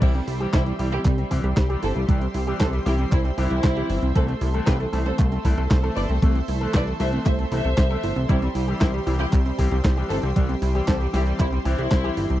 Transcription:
0.01 C2 E3 G3 C4 E4 G4 C5 E5 C6, kick, closed hi-hat, crash
0.15 G3 C4, closed hi-hat
0.28 C2 G3 E4, open hi-hat
0.40 E3 G3 C4 G4, closed hi-hat
0.53 C2 C4 E4 C5, kick, snare, clap, closed hi-hat
0.66 G3 G4, closed hi-hat
0.79 C2 E3 G3 C4 E4 G4, open hi-hat
0.92 C4 E4 G4, closed hi-hat
1.05 C2 G3, kick, clap, closed hi-hat
1.18 G3 C4, closed hi-hat
1.31 C2 E3 G3 C4 E4 G4, kick, open hi-hat
1.44 C2 G3 G4
1.57 C2 G3 C5, kick, snare, clap, closed hi-hat
1.69 E3 G3 C4 G4, closed hi-hat
1.83 G1 C4 E4 A4, open hi-hat
1.96 C2 G3 C4, closed hi-hat
2.08 C2 E3 G3 C4 G4, kick, closed hi-hat
2.21 C4, closed hi-hat
2.34 C2 G3 E4, open hi-hat
2.47 E3 G3 C4 G4, closed hi-hat
2.60 C2 C4 A4 C5, kick, snare, clap, closed hi-hat
2.73 G3 G4, closed hi-hat
2.86 C2 E3 G3 C4 E4 G4, snare, open hi-hat
2.99 G3 C4, closed hi-hat
3.12 C2 G3 C4 E4, kick, clap, closed hi-hat
3.25 G3 C4, closed hi-hat
3.37 C2 E3 G3 C4 E4 G4, open hi-hat
3.51 C2 G4, closed hi-hat
3.64 C2 C5, kick, snare, clap, closed hi-hat
3.76 E3 G3 C4 G4, closed hi-hat
3.90 G1 E4, open hi-hat
4.03 C2 C4, closed hi-hat
4.15 C2 E3 A3 C4 A4 C6, kick, closed hi-hat
4.28 A3 C4, closed hi-hat
4.41 C2 A3 E4, open hi-hat
4.54 E3 A3 C4 A4, closed hi-hat
4.67 C2 G4 B4 C5, kick, snare, clap, closed hi-hat
4.80 A3 A4, closed hi-hat
4.93 C2 E3 A3 C4 E4 A4, open hi-hat
5.06 C4 A4 C5, closed hi-hat
5.19 C2 A3, kick, clap, closed hi-hat
5.32 A3 C4, closed hi-hat
5.44 C2 E3 A3 C4 E4 A4, kick, open hi-hat
5.58 C2 A3 A4, closed hi-hat
5.71 C2 A3 C5, kick, snare, clap, closed hi-hat
5.83 E3 A3 C4 A4, closed hi-hat
5.96 G1 E4 B4 D5, open hi-hat
6.09 C2 A3 C4, closed hi-hat
6.22 C2 E3 A3 C4 A4, kick, closed hi-hat
6.35 C4, closed hi-hat
6.48 C2 A3 E4, open hi-hat
6.61 E3 A3 C4 A4, closed hi-hat
6.74 C2 B4 C5 D5, kick, snare, clap, closed hi-hat
6.87 A3 A4, closed hi-hat
7.00 C2 E3 A3 C4 E4 A4 C5 E5, snare, open hi-hat
7.13 A3 C4, closed hi-hat
7.26 C2 A3 C5 E5, kick, clap, closed hi-hat
7.39 A3 C4, closed hi-hat
7.51 C2 E3 A3 C4 E4 A4 C5 E5, open hi-hat
7.65 C2 A4, closed hi-hat
7.78 C2 C5, kick, snare, clap, closed hi-hat
7.90 E3 A3 C4 A4, closed hi-hat
8.03 G1 E4, open hi-hat
8.16 C2 C4, closed hi-hat
8.29 C2 E3 G3 C4 E4 G4, kick, closed hi-hat
8.42 G3 C4, closed hi-hat
8.55 C2 G3 E4, open hi-hat
8.68 E3 G3 C4 G4
8.81 C2 C4 E4 C5, kick, snare, clap, closed hi-hat
8.94 G3 G4, closed hi-hat
9.07 C2 E3 G3 C4 E4 G4, open hi-hat
9.20 C4 E4 G4, closed hi-hat
9.33 C2 G3, kick, clap, closed hi-hat
9.45 G3 C4, closed hi-hat
9.58 C2 E3 G3 C4 E4 G4, kick, open hi-hat
9.71 C2 G3 G4
9.84 C2 G3 C5, kick, snare, clap, closed hi-hat
9.97 E3 G3 C4 G4, closed hi-hat
10.10 G1 C4 E4 A4, open hi-hat
10.23 C2 G3 C4, closed hi-hat
10.36 C2 E3 G3 C4 G4, kick, closed hi-hat
10.49 C4, closed hi-hat
10.62 C2 G3 E4, open hi-hat
10.75 E3 G3 C4 G4, closed hi-hat
10.88 C2 C4 A4 C5, kick, snare, clap, closed hi-hat
11.01 G3 G4, closed hi-hat
11.13 C2 E3 G3 C4 E4 G4, snare, open hi-hat
11.27 G3 C4, closed hi-hat
11.39 C2 G3 C4 E4, kick, clap, closed hi-hat
11.53 G3 C4, closed hi-hat
11.65 C2 E3 G3 C4 E4 G4, open hi-hat
11.78 C2 G4, closed hi-hat
11.91 C2 C5, kick, snare, clap, closed hi-hat
12.04 E3 G3 C4 G4, closed hi-hat
12.17 G1 E4, open hi-hat
12.30 C2 C4, closed hi-hat

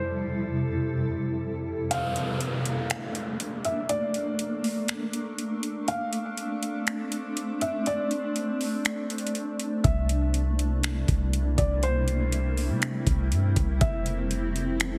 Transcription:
Already playing: F2 C3 G3 E4 A4 C5
1.91 A3 A#3 D4 F5, closed hi-hat, downlifter
2.16 closed hi-hat
2.41 closed hi-hat
2.65 closed hi-hat
2.90 finger snap, closed hi-hat
3.15 closed hi-hat
3.40 closed hi-hat
3.65 E5, closed hi-hat
3.89 D5, closed hi-hat
4.14 closed hi-hat
4.39 closed hi-hat
4.64 open hi-hat
4.88 finger snap, closed hi-hat
5.13 closed hi-hat
5.38 closed hi-hat
5.63 closed hi-hat
5.88 C4 F5, closed hi-hat
6.13 closed hi-hat
6.37 closed hi-hat
6.63 closed hi-hat
6.87 finger snap, closed hi-hat
7.12 closed hi-hat
7.37 closed hi-hat
7.61 E5, closed hi-hat
7.86 D5, closed hi-hat
8.11 closed hi-hat
8.36 closed hi-hat
8.61 open hi-hat
8.85 finger snap, closed hi-hat
9.10 closed hi-hat
9.18 closed hi-hat
9.27 closed hi-hat
9.35 closed hi-hat
9.59 closed hi-hat
9.84 C2 C3 G3 A#3 E4 E5, kick, closed hi-hat
10.09 closed hi-hat
10.34 closed hi-hat
10.59 closed hi-hat
10.83 finger snap, closed hi-hat
11.08 C2, kick, closed hi-hat
11.33 closed hi-hat
11.58 C2 D5, kick, closed hi-hat
11.83 C4 C5, closed hi-hat
12.08 closed hi-hat
12.32 closed hi-hat
12.57 open hi-hat
12.70 C3
12.82 finger snap, closed hi-hat
13.07 C2, kick, closed hi-hat
13.32 G2, closed hi-hat
13.56 C2, kick, closed hi-hat
13.81 F1 F3 G4 A4 E5, kick, closed hi-hat
14.06 closed hi-hat
14.31 closed hi-hat
14.56 closed hi-hat
14.80 finger snap, closed hi-hat

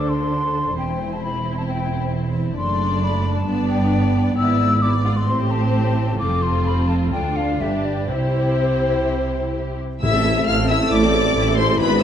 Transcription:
Already playing: D2 D3 D4 A4 C5 D6
0.09 C6
0.78 E1 E2 C4 E4 G5
1.13 A5
1.23 B5
1.58 A5
1.68 G5
2.57 F#1 F#2 A3 D4 D5 C6
3.03 B5
3.36 A5
3.47 G1 G2 B3 D4 D5
3.70 G5
4.37 G#1 G#2 B3 E4 D5 E6
4.82 B3 E4 D5 D6
5.05 F4
5.17 C6
5.28 A1 A2 C4 G4 C5
5.51 A5
6.19 F1 F2 C4 F4 A4 D6
6.43 C6
6.66 B5
6.89 A5
7.12 D2 D4 F4 A4 G5
7.36 F5
7.60 G1 G2 D4 G4 B4 E5
7.85 D5
8.08 C2 C3 E4 G4 C5
10.02 A1 A2 E3 A3 C4 E4 E5 E6
10.14 C4 A4
10.25 A3 E4
10.36 C4 A4
10.47 A1 A2 A3 E4 F5 F6
10.59 C4 A4
10.70 A3 E4 E5 E6
10.81 C4 A4
10.91 A1 A2 A3 E4 D5 D6
11.03 C4 A4
11.14 A3 E4
11.25 C4 A4
11.35 A1 A2 A3 E4
11.47 C4 A4
11.57 A3 E4 C5 C6
11.68 C4 A4
11.79 G#1 G#2 G#3 B3 E4 B4 B5
11.90 B3 D4

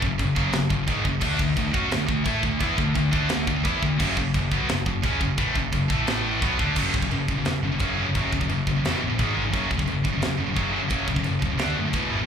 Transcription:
0.02 F#1 F#2 C#3, kick
0.19 F#1 F#2 C#3, kick, china
0.36 F#1 F#2 C#3 F#3, kick
0.53 F#1 F#2 C#3, snare, china
0.70 F#1 F#2 C#3, kick
0.88 G#1 G#2 D#3 G#3, kick, china
1.05 F#1 F#2 C#3, kick
1.21 D2 D3 A3 D4, kick, china, crash
1.39 D2 D3 A3, kick
1.57 D2 D3 A3, kick, china
1.73 F#2 F#3 C#4 F#4, kick
1.90 D2 D3 A3, snare, china
2.09 D2 D3 A3, kick
2.25 A2 A3 E4 A4, kick, china
2.43 D2 D3 A3, kick
2.60 E2 E3 B3 E4, kick, china
2.78 D2 D3 A3, kick
2.95 D2 D3 A3, kick, china
3.12 D2 D3 A3 D4, kick
3.29 D2 D3 A3, snare, china
3.47 D2 D3 A3, kick
3.64 E2 E3 B3 E4, kick, china
3.81 D2 D3 A3, kick
3.98 F#1 F#2 C#3 F#3, kick, crash, china
4.17 F#1 F#2 C#3, kick
4.34 F#1 F#2 C#3, kick, china
4.52 B1 B2 F#3 B3, kick
4.69 F#1 F#2 C#3, snare, china
4.86 F#1 F#2 C#3, kick
5.04 C#2 C#3 G#3 C#4, kick, china
5.21 F#1 F#2 C#3, kick
5.38 A1 A2 E3 A3, kick, china
5.55 F#1 F#2 C#3, kick
5.73 F#1 F#2 C#3, kick, china
5.90 A1 A2 E3 A3, kick
6.07 snare, china
6.42 B1 B2 F#3 B3, kick, china
6.59 D2 D3 A3 D4, kick
6.76 F#1 F#2 C#3 F#3, kick, crash, china
6.94 B1 F#2 C#3, kick
7.02 F#2 C#3, kick
7.11 F#1 F#2 C#3, china
7.28 F#1 F#2 C#3, kick
7.38 F#2 C#3
7.45 E1 F#2 C#3, snare, china
7.63 F#1 F#2 C#3
7.72 F#2 C#3
7.79 F#1 F#2 C#3 F#3, kick, china
7.99 F#2 C#3 F#3
8.07 F#2 C#3
8.15 F#1 F#2 C#3 F#3, kick, china
8.33 C#2 F#2 C#3, kick
8.41 F#2 C#3, kick
8.49 F#1 F#2 C#3, china
8.67 F#1 F#2 C#3, kick
8.78 F#2 C#3
8.85 E1 E2 B2 E3, snare, china
9.02 A1 E2 B2
9.10 E2 B2
9.19 G#1 G#2 D#3 G#3, kick, china
9.36 G#1 G#2 D#3 G#3
9.46 G#2 D#3
9.53 F#1 F#2 C#3 F#3, kick, china
9.70 B1 F#2 C#3, kick
9.79 F#2 C#3, kick
9.87 F#1 F#2 C#3, china
10.05 F#1 F#2 C#3, kick
10.15 F#2 C#3
10.21 E1 F#2 C#3, snare, china
10.39 F#1 F#2 C#3
10.48 F#2 C#3
10.56 F#1 F#2 C#3 F#3, kick, china
10.72 F#2 C#3 F#3
10.82 F#2 C#3
10.90 F#1 F#2 C#3 F#3, kick, china
11.06 C#2 F#2 C#3, kick
11.11 F#2 C#3
11.16 F#2 C#3, kick
11.24 F#1 F#2 C#3, china
11.39 C#2 F#2 C#3, kick
11.46 F#2 C#3
11.52 F#2 C#3
11.59 D2 D3 A3 D4, snare, china
11.79 F#2 D3 A3
11.87 D3 A3
11.93 E1 E2 B2 E3, kick, china
12.12 G#1 E2 B2 E3
12.20 E2 B2

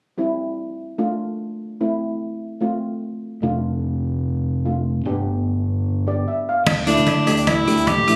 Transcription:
0.18 G3 C4 E4
0.98 A3 D4 F4
1.81 A3 C4 E4
2.61 A3 C4 F4
3.42 F1 A3 D4 F4
4.65 A3 D4 F4
5.05 G1 B3 D4 G4
6.07 B3 D4 G4 D5
6.28 E5
6.49 F5
6.66 D2, kick, crash, cowbell
6.87 A3 D4 E4, cross-stick, closed hi-hat
6.97 D3 A3 D4 E4, closed hi-hat
7.06 kick, closed hi-hat, cowbell
7.27 D2 A3 D4 G4, closed hi-hat, cowbell
7.37 closed hi-hat
7.47 E4, kick, closed hi-hat, cowbell
7.68 D2 A3 D4 G4, cross-stick, closed hi-hat
7.77 closed hi-hat
7.87 G4, kick, closed hi-hat, cowbell
7.98 A1
8.08 A3 D4 E4, cross-stick, closed hi-hat

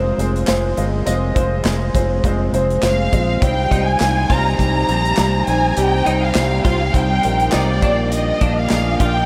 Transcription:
Already playing: F1 G#3 C4 F4 G#4 A#4 C5
0.18 F1 G#3 C4 F4 C5, closed hi-hat
0.36 closed hi-hat
0.47 F1 G#3 C4 F4 C5, snare, clap, closed hi-hat
0.77 G1 G#3 C4 F4 D#5, closed hi-hat
1.06 F1 G#3 C4 F4 D#5, closed hi-hat
1.35 F1 G#3 C4 F4 C5, kick, closed hi-hat
1.65 F1 G#3 C4 F4 G#4, snare, clap, closed hi-hat
1.95 F1 G#3 C4 F4 C5, kick, closed hi-hat
2.24 F1 G#3 C4 F4 C5, kick, closed hi-hat
2.53 F1 G#3 C4 F4 C5, closed hi-hat
2.71 closed hi-hat
2.83 F1 G#3 C4 F4 C5 F5, snare, clap, closed hi-hat
3.13 A#1 G#3 C4 F4 D#5, kick, closed hi-hat
3.42 C2 C3 G3 C4 D#4 C5 G5, kick, closed hi-hat
3.70 C2 G3 C4 D#4 C5, kick, closed hi-hat
3.89 G#5
4.00 C2 G3 C4 D#4 C5, snare, clap, closed hi-hat
4.30 C2 G3 C4 D#4 F4 C5 A#5, kick, closed hi-hat
4.58 C2 G3 C4 D#4 G4 A#5, kick, closed hi-hat
4.88 A#1 G3 C4 D#4 C5, closed hi-hat
5.05 closed hi-hat
5.17 C2 G3 C4 D#4 C5, snare, clap, closed hi-hat
5.47 A#1 G3 C4 D#4 C5 G#5, closed hi-hat
5.77 C2 C3 G3 C4 D#4 G4 G5, closed hi-hat
6.06 C2 G3 C4 D#4 C5, closed hi-hat
6.23 F5
6.35 C2 G3 C4 D#4 C5, snare, clap, closed hi-hat
6.64 C2 G3 C4 D#4 F4 C5 F5, kick, snare, closed hi-hat
6.93 C2 G3 C4 D#4 C5 G5, kick, closed hi-hat
7.23 A#1 G3 C4 D#4 A#4, closed hi-hat
7.40 closed hi-hat
7.52 C2 G3 C4 D#4 C5 D5, snare, clap, closed hi-hat
7.82 A#1 A#2 A#3 D4 F4 C#5, kick, closed hi-hat
7.89 D5
8.12 D#5, closed hi-hat
8.41 A#1 A#3 D4 F4 F5, kick, closed hi-hat
8.58 F5
8.70 A#1 A#3 D4 F4 G#4, snare, clap, closed hi-hat
9.00 A#1 A#3 D4 F4 D5 G5, kick, closed hi-hat

